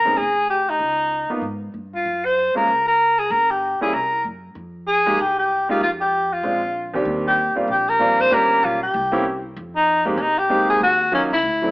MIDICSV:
0, 0, Header, 1, 5, 480
1, 0, Start_track
1, 0, Tempo, 312663
1, 1224, Time_signature, 4, 2, 24, 8
1, 17979, End_track
2, 0, Start_track
2, 0, Title_t, "Alto saxophone"
2, 0, Program_c, 0, 65
2, 0, Note_on_c, 0, 70, 82
2, 267, Note_on_c, 0, 68, 81
2, 290, Note_off_c, 0, 70, 0
2, 745, Note_off_c, 0, 68, 0
2, 768, Note_on_c, 0, 67, 76
2, 1071, Note_on_c, 0, 63, 70
2, 1094, Note_off_c, 0, 67, 0
2, 2013, Note_off_c, 0, 63, 0
2, 2993, Note_on_c, 0, 65, 74
2, 3450, Note_on_c, 0, 72, 85
2, 3473, Note_off_c, 0, 65, 0
2, 3924, Note_off_c, 0, 72, 0
2, 3940, Note_on_c, 0, 70, 82
2, 4376, Note_off_c, 0, 70, 0
2, 4415, Note_on_c, 0, 70, 85
2, 4901, Note_on_c, 0, 68, 75
2, 4924, Note_off_c, 0, 70, 0
2, 5090, Note_on_c, 0, 70, 88
2, 5113, Note_off_c, 0, 68, 0
2, 5377, Note_on_c, 0, 67, 73
2, 5400, Note_off_c, 0, 70, 0
2, 5848, Note_off_c, 0, 67, 0
2, 5868, Note_on_c, 0, 68, 68
2, 6047, Note_on_c, 0, 70, 72
2, 6070, Note_off_c, 0, 68, 0
2, 6519, Note_off_c, 0, 70, 0
2, 7486, Note_on_c, 0, 68, 88
2, 7990, Note_on_c, 0, 67, 81
2, 8013, Note_off_c, 0, 68, 0
2, 8261, Note_off_c, 0, 67, 0
2, 8270, Note_on_c, 0, 67, 77
2, 8704, Note_off_c, 0, 67, 0
2, 8758, Note_on_c, 0, 65, 70
2, 8920, Note_off_c, 0, 65, 0
2, 8946, Note_on_c, 0, 65, 77
2, 9069, Note_off_c, 0, 65, 0
2, 9225, Note_on_c, 0, 67, 81
2, 9716, Note_on_c, 0, 65, 69
2, 9739, Note_off_c, 0, 67, 0
2, 10661, Note_off_c, 0, 65, 0
2, 11169, Note_on_c, 0, 67, 72
2, 11595, Note_off_c, 0, 67, 0
2, 11833, Note_on_c, 0, 67, 82
2, 12111, Note_on_c, 0, 70, 86
2, 12134, Note_off_c, 0, 67, 0
2, 12598, Note_on_c, 0, 72, 95
2, 12621, Note_off_c, 0, 70, 0
2, 12796, Note_on_c, 0, 70, 92
2, 12820, Note_off_c, 0, 72, 0
2, 13275, Note_on_c, 0, 65, 82
2, 13298, Note_off_c, 0, 70, 0
2, 13543, Note_off_c, 0, 65, 0
2, 13553, Note_on_c, 0, 67, 78
2, 14435, Note_off_c, 0, 67, 0
2, 14978, Note_on_c, 0, 63, 86
2, 15416, Note_off_c, 0, 63, 0
2, 15609, Note_on_c, 0, 61, 58
2, 15676, Note_on_c, 0, 63, 86
2, 15699, Note_off_c, 0, 61, 0
2, 15942, Note_on_c, 0, 67, 96
2, 15965, Note_off_c, 0, 63, 0
2, 16409, Note_off_c, 0, 67, 0
2, 16427, Note_on_c, 0, 68, 89
2, 16590, Note_off_c, 0, 68, 0
2, 16631, Note_on_c, 0, 66, 101
2, 17056, Note_off_c, 0, 66, 0
2, 17110, Note_on_c, 0, 61, 81
2, 17230, Note_off_c, 0, 61, 0
2, 17397, Note_on_c, 0, 64, 86
2, 17979, Note_off_c, 0, 64, 0
2, 17979, End_track
3, 0, Start_track
3, 0, Title_t, "Grand piano"
3, 0, Program_c, 1, 0
3, 72, Note_on_c, 1, 60, 46
3, 76, Note_on_c, 1, 61, 41
3, 83, Note_on_c, 1, 63, 42
3, 87, Note_on_c, 1, 68, 51
3, 243, Note_off_c, 1, 60, 0
3, 246, Note_off_c, 1, 61, 0
3, 249, Note_off_c, 1, 63, 0
3, 251, Note_off_c, 1, 68, 0
3, 1990, Note_on_c, 1, 58, 48
3, 1998, Note_on_c, 1, 59, 47
3, 2003, Note_on_c, 1, 63, 45
3, 2010, Note_on_c, 1, 65, 53
3, 2164, Note_off_c, 1, 58, 0
3, 2168, Note_off_c, 1, 59, 0
3, 2170, Note_off_c, 1, 63, 0
3, 2174, Note_off_c, 1, 65, 0
3, 3911, Note_on_c, 1, 56, 50
3, 3916, Note_on_c, 1, 58, 43
3, 3924, Note_on_c, 1, 61, 43
3, 3935, Note_on_c, 1, 65, 54
3, 4085, Note_off_c, 1, 56, 0
3, 4088, Note_off_c, 1, 58, 0
3, 4092, Note_off_c, 1, 61, 0
3, 4097, Note_off_c, 1, 65, 0
3, 5844, Note_on_c, 1, 55, 53
3, 5852, Note_on_c, 1, 58, 45
3, 5853, Note_on_c, 1, 61, 47
3, 5868, Note_on_c, 1, 64, 60
3, 6014, Note_off_c, 1, 55, 0
3, 6018, Note_off_c, 1, 58, 0
3, 6018, Note_off_c, 1, 61, 0
3, 6026, Note_off_c, 1, 64, 0
3, 7769, Note_on_c, 1, 56, 62
3, 7780, Note_on_c, 1, 58, 55
3, 7785, Note_on_c, 1, 63, 53
3, 7787, Note_on_c, 1, 67, 69
3, 7937, Note_off_c, 1, 56, 0
3, 7943, Note_off_c, 1, 58, 0
3, 7946, Note_off_c, 1, 63, 0
3, 7947, Note_off_c, 1, 67, 0
3, 8735, Note_on_c, 1, 56, 59
3, 8747, Note_on_c, 1, 58, 58
3, 8749, Note_on_c, 1, 63, 59
3, 8760, Note_on_c, 1, 67, 69
3, 8901, Note_off_c, 1, 56, 0
3, 8907, Note_off_c, 1, 58, 0
3, 8908, Note_off_c, 1, 63, 0
3, 8914, Note_off_c, 1, 67, 0
3, 9876, Note_on_c, 1, 56, 44
3, 9882, Note_on_c, 1, 60, 44
3, 9890, Note_on_c, 1, 62, 42
3, 9893, Note_on_c, 1, 65, 47
3, 10136, Note_off_c, 1, 56, 0
3, 10139, Note_off_c, 1, 60, 0
3, 10143, Note_off_c, 1, 62, 0
3, 10144, Note_off_c, 1, 65, 0
3, 10648, Note_on_c, 1, 39, 59
3, 10660, Note_on_c, 1, 55, 49
3, 10661, Note_on_c, 1, 60, 53
3, 10669, Note_on_c, 1, 62, 49
3, 10674, Note_on_c, 1, 67, 63
3, 11279, Note_off_c, 1, 39, 0
3, 11285, Note_off_c, 1, 55, 0
3, 11286, Note_off_c, 1, 60, 0
3, 11289, Note_off_c, 1, 62, 0
3, 11292, Note_off_c, 1, 67, 0
3, 11596, Note_on_c, 1, 55, 53
3, 11602, Note_on_c, 1, 58, 48
3, 11608, Note_on_c, 1, 60, 46
3, 11613, Note_on_c, 1, 65, 57
3, 11615, Note_on_c, 1, 62, 50
3, 11772, Note_off_c, 1, 55, 0
3, 11775, Note_off_c, 1, 58, 0
3, 11778, Note_off_c, 1, 60, 0
3, 11781, Note_off_c, 1, 65, 0
3, 11782, Note_off_c, 1, 62, 0
3, 12270, Note_on_c, 1, 55, 57
3, 12273, Note_on_c, 1, 58, 53
3, 12279, Note_on_c, 1, 60, 50
3, 12287, Note_on_c, 1, 62, 55
3, 12289, Note_on_c, 1, 65, 65
3, 12722, Note_off_c, 1, 55, 0
3, 12725, Note_off_c, 1, 58, 0
3, 12738, Note_off_c, 1, 65, 0
3, 12745, Note_on_c, 1, 55, 63
3, 12748, Note_on_c, 1, 58, 54
3, 12756, Note_off_c, 1, 60, 0
3, 12757, Note_on_c, 1, 61, 57
3, 12760, Note_off_c, 1, 62, 0
3, 12761, Note_on_c, 1, 65, 55
3, 12769, Note_on_c, 1, 67, 72
3, 13460, Note_off_c, 1, 55, 0
3, 13462, Note_off_c, 1, 58, 0
3, 13466, Note_off_c, 1, 61, 0
3, 13468, Note_off_c, 1, 65, 0
3, 13472, Note_off_c, 1, 67, 0
3, 13998, Note_on_c, 1, 58, 67
3, 14009, Note_on_c, 1, 60, 62
3, 14013, Note_on_c, 1, 61, 61
3, 14013, Note_on_c, 1, 64, 64
3, 14023, Note_on_c, 1, 67, 74
3, 14171, Note_off_c, 1, 58, 0
3, 14177, Note_off_c, 1, 60, 0
3, 14179, Note_off_c, 1, 61, 0
3, 14179, Note_off_c, 1, 64, 0
3, 14184, Note_off_c, 1, 67, 0
3, 15434, Note_on_c, 1, 56, 61
3, 15436, Note_on_c, 1, 58, 57
3, 15441, Note_on_c, 1, 60, 56
3, 15448, Note_on_c, 1, 63, 54
3, 15451, Note_on_c, 1, 67, 63
3, 15608, Note_off_c, 1, 56, 0
3, 15609, Note_off_c, 1, 58, 0
3, 15612, Note_off_c, 1, 60, 0
3, 15615, Note_off_c, 1, 63, 0
3, 15617, Note_off_c, 1, 67, 0
3, 16112, Note_on_c, 1, 56, 58
3, 16112, Note_on_c, 1, 58, 55
3, 16120, Note_on_c, 1, 60, 57
3, 16121, Note_on_c, 1, 63, 56
3, 16131, Note_on_c, 1, 67, 60
3, 16589, Note_off_c, 1, 58, 0
3, 16590, Note_off_c, 1, 56, 0
3, 16593, Note_off_c, 1, 60, 0
3, 16594, Note_off_c, 1, 63, 0
3, 16599, Note_off_c, 1, 67, 0
3, 17072, Note_on_c, 1, 54, 59
3, 17072, Note_on_c, 1, 58, 51
3, 17078, Note_on_c, 1, 61, 56
3, 17090, Note_on_c, 1, 63, 54
3, 17092, Note_on_c, 1, 65, 63
3, 17329, Note_off_c, 1, 54, 0
3, 17329, Note_off_c, 1, 58, 0
3, 17332, Note_off_c, 1, 61, 0
3, 17338, Note_off_c, 1, 63, 0
3, 17339, Note_off_c, 1, 65, 0
3, 17838, Note_on_c, 1, 54, 47
3, 17850, Note_on_c, 1, 57, 45
3, 17853, Note_on_c, 1, 60, 43
3, 17860, Note_on_c, 1, 62, 43
3, 17863, Note_on_c, 1, 64, 55
3, 17979, Note_off_c, 1, 54, 0
3, 17979, Note_off_c, 1, 57, 0
3, 17979, Note_off_c, 1, 60, 0
3, 17979, Note_off_c, 1, 62, 0
3, 17979, Note_off_c, 1, 64, 0
3, 17979, End_track
4, 0, Start_track
4, 0, Title_t, "Upright bass"
4, 0, Program_c, 2, 32
4, 99, Note_on_c, 2, 35, 61
4, 244, Note_off_c, 2, 35, 0
4, 254, Note_on_c, 2, 29, 66
4, 1171, Note_off_c, 2, 29, 0
4, 1216, Note_on_c, 2, 37, 67
4, 1935, Note_off_c, 2, 37, 0
4, 2170, Note_on_c, 2, 44, 62
4, 2624, Note_off_c, 2, 44, 0
4, 2668, Note_on_c, 2, 43, 56
4, 3114, Note_off_c, 2, 43, 0
4, 3152, Note_on_c, 2, 42, 66
4, 3865, Note_off_c, 2, 42, 0
4, 4114, Note_on_c, 2, 37, 67
4, 5024, Note_off_c, 2, 37, 0
4, 5070, Note_on_c, 2, 31, 75
4, 5786, Note_off_c, 2, 31, 0
4, 6032, Note_on_c, 2, 36, 70
4, 6479, Note_off_c, 2, 36, 0
4, 6514, Note_on_c, 2, 42, 60
4, 6960, Note_off_c, 2, 42, 0
4, 6989, Note_on_c, 2, 41, 68
4, 7904, Note_off_c, 2, 41, 0
4, 7961, Note_on_c, 2, 36, 64
4, 8871, Note_off_c, 2, 36, 0
4, 8919, Note_on_c, 2, 41, 67
4, 9829, Note_off_c, 2, 41, 0
4, 9873, Note_on_c, 2, 34, 69
4, 10787, Note_off_c, 2, 34, 0
4, 10826, Note_on_c, 2, 39, 80
4, 11546, Note_off_c, 2, 39, 0
4, 11782, Note_on_c, 2, 34, 70
4, 12700, Note_off_c, 2, 34, 0
4, 12762, Note_on_c, 2, 31, 81
4, 13204, Note_off_c, 2, 31, 0
4, 13243, Note_on_c, 2, 35, 75
4, 13684, Note_off_c, 2, 35, 0
4, 13722, Note_on_c, 2, 36, 78
4, 14628, Note_off_c, 2, 36, 0
4, 14684, Note_on_c, 2, 41, 85
4, 15589, Note_off_c, 2, 41, 0
4, 15620, Note_on_c, 2, 36, 70
4, 16535, Note_off_c, 2, 36, 0
4, 16579, Note_on_c, 2, 39, 73
4, 17297, Note_off_c, 2, 39, 0
4, 17357, Note_on_c, 2, 37, 69
4, 17530, Note_off_c, 2, 37, 0
4, 17539, Note_on_c, 2, 38, 70
4, 17979, Note_off_c, 2, 38, 0
4, 17979, End_track
5, 0, Start_track
5, 0, Title_t, "Muted upright bass strokes"
5, 1987, Note_on_c, 9, 29, 33
5, 2140, Note_off_c, 9, 29, 0
5, 3921, Note_on_c, 9, 29, 35
5, 4075, Note_off_c, 9, 29, 0
5, 5846, Note_on_c, 9, 29, 32
5, 6000, Note_off_c, 9, 29, 0
5, 11600, Note_on_c, 9, 29, 38
5, 11753, Note_off_c, 9, 29, 0
5, 17979, End_track
0, 0, End_of_file